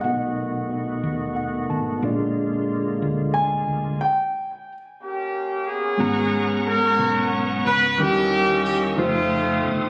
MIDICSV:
0, 0, Header, 1, 6, 480
1, 0, Start_track
1, 0, Tempo, 661521
1, 26, Time_signature, 6, 3, 24, 8
1, 7179, End_track
2, 0, Start_track
2, 0, Title_t, "Grand piano"
2, 0, Program_c, 0, 0
2, 8, Note_on_c, 0, 78, 69
2, 950, Note_off_c, 0, 78, 0
2, 2422, Note_on_c, 0, 80, 84
2, 2909, Note_on_c, 0, 79, 81
2, 2922, Note_off_c, 0, 80, 0
2, 3422, Note_off_c, 0, 79, 0
2, 7179, End_track
3, 0, Start_track
3, 0, Title_t, "Tonewheel organ"
3, 0, Program_c, 1, 16
3, 0, Note_on_c, 1, 51, 52
3, 0, Note_on_c, 1, 66, 52
3, 36, Note_on_c, 1, 57, 50
3, 41, Note_on_c, 1, 59, 42
3, 1445, Note_off_c, 1, 51, 0
3, 1445, Note_off_c, 1, 66, 0
3, 1460, Note_off_c, 1, 57, 0
3, 1463, Note_off_c, 1, 59, 0
3, 1470, Note_on_c, 1, 58, 46
3, 1471, Note_on_c, 1, 50, 49
3, 1472, Note_on_c, 1, 56, 47
3, 1475, Note_on_c, 1, 65, 60
3, 2898, Note_off_c, 1, 58, 0
3, 2899, Note_off_c, 1, 50, 0
3, 2899, Note_off_c, 1, 56, 0
3, 2901, Note_off_c, 1, 65, 0
3, 4352, Note_on_c, 1, 59, 64
3, 4354, Note_on_c, 1, 78, 60
3, 4355, Note_on_c, 1, 82, 56
3, 4360, Note_on_c, 1, 85, 73
3, 5777, Note_off_c, 1, 59, 0
3, 5777, Note_off_c, 1, 78, 0
3, 5778, Note_off_c, 1, 82, 0
3, 5787, Note_on_c, 1, 67, 63
3, 5788, Note_on_c, 1, 75, 61
3, 5788, Note_on_c, 1, 88, 71
3, 6492, Note_off_c, 1, 85, 0
3, 6500, Note_off_c, 1, 67, 0
3, 6501, Note_off_c, 1, 75, 0
3, 6501, Note_off_c, 1, 88, 0
3, 6514, Note_on_c, 1, 87, 77
3, 6516, Note_on_c, 1, 69, 69
3, 6519, Note_on_c, 1, 77, 64
3, 7179, Note_off_c, 1, 69, 0
3, 7179, Note_off_c, 1, 77, 0
3, 7179, Note_off_c, 1, 87, 0
3, 7179, End_track
4, 0, Start_track
4, 0, Title_t, "Tine electric piano"
4, 0, Program_c, 2, 4
4, 0, Control_c, 2, 64, 127
4, 22, Note_on_c, 2, 59, 48
4, 29, Note_on_c, 2, 63, 41
4, 34, Note_on_c, 2, 66, 39
4, 36, Control_c, 2, 64, 0
4, 37, Note_on_c, 2, 47, 46
4, 37, Note_on_c, 2, 69, 42
4, 43, Note_on_c, 2, 75, 51
4, 148, Control_c, 2, 64, 127
4, 724, Note_off_c, 2, 47, 0
4, 987, Note_on_c, 2, 78, 58
4, 1211, Note_off_c, 2, 78, 0
4, 1232, Note_on_c, 2, 81, 57
4, 1439, Note_off_c, 2, 59, 0
4, 1442, Note_off_c, 2, 63, 0
4, 1445, Note_off_c, 2, 66, 0
4, 1446, Note_off_c, 2, 69, 0
4, 1449, Note_off_c, 2, 75, 0
4, 1455, Note_off_c, 2, 81, 0
4, 1467, Note_on_c, 2, 58, 57
4, 1472, Note_on_c, 2, 62, 52
4, 1475, Note_on_c, 2, 46, 50
4, 1477, Note_on_c, 2, 65, 50
4, 1480, Control_c, 2, 64, 0
4, 1482, Note_on_c, 2, 68, 48
4, 1486, Note_on_c, 2, 74, 56
4, 1621, Control_c, 2, 64, 127
4, 2165, Note_off_c, 2, 46, 0
4, 2882, Note_off_c, 2, 58, 0
4, 2885, Note_off_c, 2, 62, 0
4, 2887, Note_off_c, 2, 65, 0
4, 2890, Note_off_c, 2, 68, 0
4, 2892, Note_off_c, 2, 74, 0
4, 2921, Control_c, 2, 64, 0
4, 4335, Note_on_c, 2, 56, 59
4, 4342, Note_on_c, 2, 59, 55
4, 4344, Note_on_c, 2, 44, 55
4, 4347, Note_on_c, 2, 61, 48
4, 4349, Note_on_c, 2, 66, 51
4, 4357, Note_on_c, 2, 82, 62
4, 4503, Control_c, 2, 64, 127
4, 5039, Note_off_c, 2, 44, 0
4, 5754, Note_off_c, 2, 56, 0
4, 5757, Note_off_c, 2, 59, 0
4, 5759, Note_off_c, 2, 61, 0
4, 5761, Note_off_c, 2, 66, 0
4, 5765, Note_off_c, 2, 82, 0
4, 5793, Note_on_c, 2, 55, 56
4, 5793, Note_on_c, 2, 61, 56
4, 5795, Note_on_c, 2, 63, 53
4, 5798, Note_on_c, 2, 51, 57
4, 5799, Note_on_c, 2, 64, 57
4, 5801, Control_c, 2, 64, 0
4, 5801, Note_on_c, 2, 70, 62
4, 5925, Control_c, 2, 64, 127
4, 6484, Note_off_c, 2, 51, 0
4, 6505, Note_off_c, 2, 63, 0
4, 6510, Note_on_c, 2, 57, 71
4, 6511, Note_off_c, 2, 55, 0
4, 6511, Note_off_c, 2, 61, 0
4, 6513, Note_on_c, 2, 49, 62
4, 6514, Note_off_c, 2, 64, 0
4, 6514, Note_on_c, 2, 63, 66
4, 6515, Note_off_c, 2, 70, 0
4, 6518, Control_c, 2, 64, 0
4, 6519, Note_on_c, 2, 65, 61
4, 6519, Note_on_c, 2, 72, 82
4, 6649, Control_c, 2, 64, 127
4, 7179, Note_off_c, 2, 49, 0
4, 7179, Note_off_c, 2, 57, 0
4, 7179, Note_off_c, 2, 63, 0
4, 7179, Note_off_c, 2, 65, 0
4, 7179, Note_off_c, 2, 72, 0
4, 7179, End_track
5, 0, Start_track
5, 0, Title_t, "Horn section"
5, 0, Program_c, 3, 61
5, 3643, Note_on_c, 3, 67, 69
5, 3645, Note_on_c, 3, 58, 48
5, 3649, Note_on_c, 3, 61, 51
5, 4089, Note_off_c, 3, 67, 0
5, 4110, Note_on_c, 3, 68, 82
5, 4115, Note_off_c, 3, 61, 0
5, 4124, Note_on_c, 3, 61, 58
5, 4127, Note_on_c, 3, 59, 58
5, 4330, Note_off_c, 3, 58, 0
5, 4809, Note_off_c, 3, 61, 0
5, 4811, Note_off_c, 3, 59, 0
5, 4831, Note_off_c, 3, 68, 0
5, 4831, Note_on_c, 3, 70, 100
5, 4841, Note_on_c, 3, 61, 74
5, 4841, Note_on_c, 3, 66, 71
5, 5312, Note_off_c, 3, 70, 0
5, 5527, Note_off_c, 3, 61, 0
5, 5527, Note_off_c, 3, 66, 0
5, 5557, Note_on_c, 3, 71, 101
5, 5777, Note_off_c, 3, 71, 0
5, 5800, Note_on_c, 3, 67, 105
5, 5801, Note_on_c, 3, 58, 75
5, 5801, Note_on_c, 3, 61, 79
5, 6246, Note_off_c, 3, 67, 0
5, 6273, Note_on_c, 3, 67, 92
5, 6380, Note_off_c, 3, 67, 0
5, 6485, Note_off_c, 3, 61, 0
5, 6486, Note_off_c, 3, 58, 0
5, 6510, Note_on_c, 3, 65, 96
5, 6511, Note_on_c, 3, 57, 75
5, 6511, Note_on_c, 3, 60, 71
5, 7020, Note_off_c, 3, 65, 0
5, 7179, Note_off_c, 3, 57, 0
5, 7179, Note_off_c, 3, 60, 0
5, 7179, End_track
6, 0, Start_track
6, 0, Title_t, "Fingered electric bass"
6, 0, Program_c, 4, 33
6, 28, Note_on_c, 4, 35, 84
6, 720, Note_off_c, 4, 35, 0
6, 750, Note_on_c, 4, 39, 80
6, 1201, Note_off_c, 4, 39, 0
6, 1234, Note_on_c, 4, 32, 67
6, 1453, Note_off_c, 4, 32, 0
6, 1469, Note_on_c, 4, 34, 81
6, 2162, Note_off_c, 4, 34, 0
6, 2192, Note_on_c, 4, 38, 74
6, 2644, Note_off_c, 4, 38, 0
6, 2669, Note_on_c, 4, 38, 63
6, 2892, Note_off_c, 4, 38, 0
6, 4351, Note_on_c, 4, 32, 97
6, 5043, Note_off_c, 4, 32, 0
6, 5073, Note_on_c, 4, 35, 90
6, 5523, Note_off_c, 4, 35, 0
6, 5555, Note_on_c, 4, 37, 90
6, 5774, Note_off_c, 4, 37, 0
6, 5793, Note_on_c, 4, 39, 103
6, 6482, Note_off_c, 4, 39, 0
6, 6514, Note_on_c, 4, 41, 111
6, 6962, Note_off_c, 4, 41, 0
6, 6992, Note_on_c, 4, 31, 75
6, 7179, Note_off_c, 4, 31, 0
6, 7179, End_track
0, 0, End_of_file